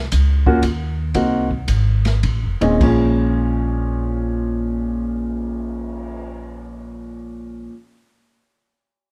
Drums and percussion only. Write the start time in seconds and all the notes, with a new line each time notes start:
0.12 kick, hi-hat pedal, ride
0.46 kick
0.63 kick, hi-hat pedal, ride
1.14 kick, ride
1.51 kick
1.68 kick, hi-hat pedal, ride
2.05 snare, ride
2.23 kick, ride
2.61 ride
2.81 kick, crash
3.20 cymbal swell